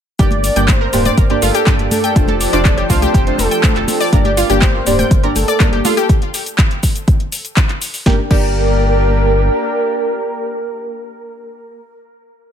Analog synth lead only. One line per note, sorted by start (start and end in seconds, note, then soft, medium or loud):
0.19 0.70 D5 loud
0.69 1.32 C5 loud
1.42 1.87 A4 medium
1.91 2.36 A4 loud
2.41 2.91 D5 medium
2.90 3.40 C5 medium
3.39 4.03 A4 loud
4.13 4.57 D5 loud
4.62 5.26 C5 loud
5.36 5.80 A4 loud
5.85 6.09 A4 medium
8.06 8.20 A#4 loud
8.31 11.81 A#4 loud